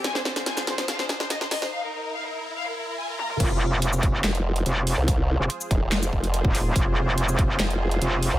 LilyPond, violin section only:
\new Staff \with { instrumentName = "Violin section" } { \time 4/4 \key f \minor \tempo 4 = 143 << { aes''8 r8 aes''8 r8 f''8 r8 ees''8 ees''8 | f''8 r8 f''8 r8 f''8 r8 aes''8 bes''8 | r1 | r1 |
r1 | } \\ { r16 c''16 c''16 c''16 r16 c''16 c''16 c''16 r16 c''16 c''16 c''16 r16 c''16 r16 c''16 | r16 bes'16 bes'16 bes'16 r16 bes'16 bes'16 bes'16 r16 bes'16 bes'16 bes'16 r16 bes'16 r16 bes'16 | r1 | r1 |
r1 | } >> }